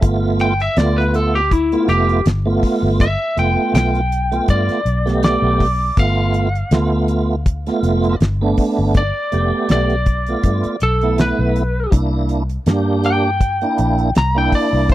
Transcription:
0.01 G1 A3 B3 F4, kick, closed hi-hat
0.39 G5, closed hi-hat
0.60 E5, closed hi-hat
0.77 D2 A3 B3 F4 D5, snare, closed hi-hat
0.98 B4, snare
1.14 A4, closed hi-hat
1.35 G4
1.51 E4, kick, closed hi-hat
1.72 A3 B3 F4, closed hi-hat
1.88 F1 G4, closed hi-hat
2.09 closed hi-hat
2.26 G1, snare, closed hi-hat
2.45 A3 B3 F4
2.63 kick, open hi-hat
2.83 G1
3.00 E5, kick, closed hi-hat
3.36 F1 A3 B3 F4 G5, closed hi-hat
3.74 B1 G5, snare, closed hi-hat
3.95 closed hi-hat
4.12 closed hi-hat
4.32 A3 B3 F4, closed hi-hat
4.48 G2 D5, kick, closed hi-hat
4.69 muted fingered electric bass stroke, snare, closed hi-hat
4.85 B1, closed hi-hat
5.06 A3 B3 G4, snare, closed hi-hat
5.23 D5, snare, closed hi-hat
5.42 B1
5.60 kick, open hi-hat
5.97 G1 A3 B3 F4 F5, kick, closed hi-hat
6.34 closed hi-hat
6.55 closed hi-hat
6.71 D2 A3 B3 F4, snare, closed hi-hat
7.08 closed hi-hat
7.46 kick, closed hi-hat
7.66 A3 B3 F4, snare, closed hi-hat
7.83 F1, closed hi-hat
8.04 closed hi-hat
8.20 G1, snare, closed hi-hat
8.41 A3 B3 D4
8.57 kick, open hi-hat
8.79 G1
8.94 D5, kick, closed hi-hat
9.32 F1 A3 B3 G4, closed hi-hat
9.69 B1 D5, snare, closed hi-hat
9.90 closed hi-hat
10.06 kick, closed hi-hat
10.26 A3 B3 F4, closed hi-hat
10.43 G2, kick, closed hi-hat
10.64 muted fingered electric bass stroke, closed hi-hat
10.80 B1 A4, closed hi-hat
11.01 A3 B3 E4, closed hi-hat
11.18 B4, snare, closed hi-hat
11.39 B1
11.56 closed hi-hat
11.91 C2 A#3 D4 E4, kick, closed hi-hat
12.29 closed hi-hat
12.49 closed hi-hat
12.66 G2 A#3 D4 G4, snare, closed hi-hat
13.04 G5, closed hi-hat
13.41 kick, closed hi-hat
13.61 A#3 D4 E4, closed hi-hat
13.78 A#1, closed hi-hat
13.98 closed hi-hat
14.15 C2 A#5, snare, closed hi-hat
14.35 A#3 D4 E4 G5
14.52 D5, kick, open hi-hat
14.73 C2
14.90 kick, closed hi-hat

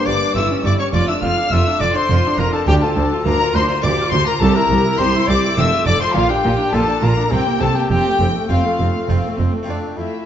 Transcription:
Already playing: A#3 D4 G4
0.06 G1 G2 A#3 D5 D6
0.22 D4
0.35 G1 G2 A3 C#4 E4 A4 E5 E6
0.50 C#4
0.64 G1 G2 E4 D5 D6
0.79 C#4 C#5 C#6
0.92 F1 F2 F4 D5 D6
1.08 D4 E5 E6
1.22 F1 F2 F4 F5 F6
1.37 D4
1.51 F1 F2 A3 D4 F4 A4 E5 E6
1.66 D4
1.80 F1 F2 F4 D5 D6
1.94 D4 C5 C6
2.10 F1 F2 A3 D4 F4 A4
2.25 D4
2.37 F1 F2 F4 A#4 A#5
2.52 D4 A4 A5
2.66 D2 D4 G4 G5
2.80 F4 A4 A5
2.96 D2 D4
3.11 F4
3.24 D2 A#3 D4 F4 A#4 A#5
3.40 F4
3.53 D2 D4 C5 C6
3.69 F4
3.82 D2 A#3 F4 G4 D5 D6
3.97 F4
4.11 D2 G4 C5 C6
4.26 F4 A#4 A#5
4.40 C2 G4 A4 A5
4.54 E4 A#4 A#5
4.69 C2 G4
4.85 E4
4.97 C2 C4 E4 G4 C5 C6
5.13 E4
5.27 C2 G4 D5 D6
5.42 E4
5.55 F1 F2 A3 C4 F4 A4 E5 E6
5.71 F4
5.85 F1 F2 A4 D5 D6
6.00 F4 C5 C6
6.14 A#1 A#2 F4 F5
6.29 D4 G4 G5
6.43 A#1 A#2 F4
6.58 D4
6.73 A#1 A#2 A#3 D4 F4 A4 A5
6.87 D4
7.02 A#1 A#2 F4 A#4 A#5
7.17 D4
7.31 C2 C3 A#3 C4 E4 G4 G5
7.46 A#3
7.60 C2 C3 C4 A4 A5
7.75 A#3 G4 G5
7.89 F1 F2 C4 G4 G5
8.05 A3
8.19 F1 F2 C4
8.34 A3
8.48 F1 F2 A3 C4 F4 F5
8.64 A3
8.79 F1 F2 C4
8.94 A3
9.08 F1 F2 A3 C4 F4
9.24 A3
9.38 F1 F2 C4
9.54 A3
9.63 A3 C4 F4
9.67 F2 A3 D4 D5 F5
9.97 F2 A3 E4 E5 F5

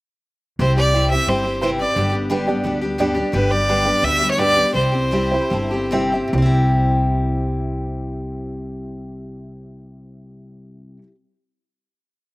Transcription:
0.59 C2 C3 G3 C4 E4 G4 C5
0.77 C4 E4 G4 D5
0.93 C3 G3 C4 E4 G4 C5
1.11 C4 E4 G4 C5 E5
1.27 G1 G3 C4 E4 G4 C5
1.44 C4 E4 G4
1.61 C3 G3 C4 E4 G4 B4 C5
1.78 C4 E4 G4 D5
1.95 G1 G2 D3 G3 B3 D4 G4
2.12 G3 B3 D4 G4
2.30 G2 D3 G3 B3 D4 G4 B4
2.47 G3 B3 D4 G4 D5
2.64 D2 G3 B3 D4 G4
2.81 G3 B3 D4 G4
2.98 G2 D3 G3 B3 D4 G4 D5
3.15 G3 B3 D4 G4
3.32 G1 G2 D3 G3 B3 D4 G4 B4
3.50 G3 B3 D4 G4 D5
3.68 G2 D3 G3 B3 D4 G4 B4
3.85 G3 B3 D4 G4 B4
4.02 D2 G3 B3 D4 G4 E5
4.19 G3 B3 D4 G4
4.31 C#5
4.37 G2 D3 G3 B3 D4 G4 B4 D5
4.55 G3 B3 D4 G4
4.72 C2 C3 G3 C4 E4 G4 C5
4.92 C4 E4 G4
5.11 C3 G3 C4 E4 G4 C5
5.31 C4 E4 G4 C5 B5
5.50 G1 G3 C4 E4 G4 A5
5.71 C4 E4 G4 G5
5.91 C3 G3 C4 E4 G4 C5 E5
6.12 C4 E4 G4 E5
6.28 C3
6.32 C2 G3 E4 G4 C5
6.38 C4
6.42 E4 G4

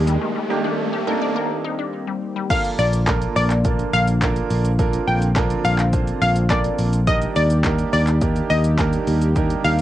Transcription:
Already playing: D#2 D#3 G3 A#3 D4 D#4 G4 D5, riser
0.07 G3, closed hi-hat, shaker
0.22 D#3 C4
0.36 G3
0.50 A#3 D4 D#4 G4
0.64 D4
0.93 G4
1.07 A#3 D4 D#4 A4 A#4
1.22 D5
1.36 A#4
1.65 D#4
1.79 D4
2.07 G3
2.36 G3
2.50 D3 F3 A#3 D4 F4 A4 A#4 F5, kick, closed hi-hat, crash, shaker
2.65 closed hi-hat, shaker
2.79 A#1 D5, open hi-hat, shaker
2.93 closed hi-hat, shaker
3.07 A#3 D4 F4 A4 A#4, kick, snare, clap, closed hi-hat, shaker
3.22 closed hi-hat, shaker
3.36 A#1 D5, open hi-hat, shaker
3.50 clap, closed hi-hat, shaker
3.64 A#3 D4 F4 A4 A#4, kick, closed hi-hat, shaker
3.79 closed hi-hat, shaker
3.93 A#1 F5, open hi-hat, shaker
4.07 closed hi-hat, shaker
4.21 A#3 D4 F4 A4 A#4, kick, snare, clap, closed hi-hat, shaker
4.36 closed hi-hat, shaker
4.50 A#1, open hi-hat, shaker
4.65 closed hi-hat, shaker
4.79 A#3 C4 D4 F4 A4 A#4, kick, closed hi-hat, shaker
4.93 closed hi-hat, shaker
5.07 A#1 G5, open hi-hat, shaker
5.22 closed hi-hat, shaker
5.36 A#3 D4 F4 A4 A#4, kick, snare, clap, closed hi-hat, shaker
5.50 closed hi-hat, shaker
5.65 A#1 F5, open hi-hat, shaker
5.79 clap, closed hi-hat, shaker
5.93 A#3 D4 F4 A4 C5, kick, closed hi-hat, shaker
6.07 closed hi-hat, shaker
6.22 A#1 F5, open hi-hat, shaker
6.36 closed hi-hat, shaker
6.50 A#3 D4 F4 A4 A#4 D5, kick, snare, clap, closed hi-hat, shaker
6.64 closed hi-hat, shaker
6.79 A#1, open hi-hat, shaker
6.93 closed hi-hat, shaker
7.07 D#3 G3 A#3 D4 D#4 G4 A#4 D5 D#5, kick, closed hi-hat, shaker
7.22 closed hi-hat, shaker
7.36 D#2 D5, open hi-hat, shaker
7.50 closed hi-hat, shaker
7.64 A#3 D4 D#4 G4 A#4, kick, snare, clap, closed hi-hat, shaker
7.79 closed hi-hat, shaker
7.93 D#2 D5, open hi-hat, shaker
8.07 clap, closed hi-hat, shaker
8.21 A#3 D4 D#4 G4 A#4, kick, closed hi-hat, shaker
8.36 closed hi-hat, shaker
8.50 D#2 D#5, open hi-hat, shaker
8.64 closed hi-hat, shaker
8.78 A#3 D4 D#4 G4 A#4, kick, snare, clap, closed hi-hat, shaker
8.93 closed hi-hat, shaker
9.07 D#2, open hi-hat, shaker
9.22 closed hi-hat, shaker
9.36 A#3 C4 D4 D#4 G4 A#4, kick, closed hi-hat, shaker
9.50 closed hi-hat, shaker
9.64 D#2 F5, open hi-hat, shaker

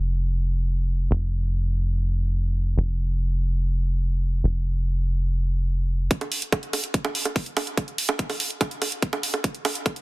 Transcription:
Already playing: F1
1.11 F1
2.77 F1
4.44 F1
6.11 kick, closed hi-hat
6.21 closed hi-hat, high bongo
6.32 open hi-hat
6.42 closed hi-hat
6.52 kick, closed hi-hat, high bongo
6.63 closed hi-hat
6.73 open hi-hat, high bongo
6.84 closed hi-hat
6.94 kick, closed hi-hat
7.05 closed hi-hat, high bongo
7.15 open hi-hat
7.25 closed hi-hat, high bongo
7.36 kick, open hi-hat
7.46 closed hi-hat
7.57 open hi-hat, high bongo
7.67 closed hi-hat
7.77 kick, closed hi-hat, high bongo
7.88 closed hi-hat
7.98 open hi-hat
8.09 closed hi-hat, high bongo
8.19 kick, closed hi-hat
8.30 open hi-hat, high bongo
8.40 open hi-hat
8.50 closed hi-hat
8.61 kick, closed hi-hat, high bongo
8.71 closed hi-hat
8.82 open hi-hat, high bongo
8.92 closed hi-hat
9.02 kick, closed hi-hat
9.13 closed hi-hat, high bongo
9.23 open hi-hat
9.34 closed hi-hat, high bongo
9.44 kick, closed hi-hat
9.55 closed hi-hat
9.65 open hi-hat, high bongo
9.75 closed hi-hat
9.86 kick, closed hi-hat, high bongo
9.96 closed hi-hat

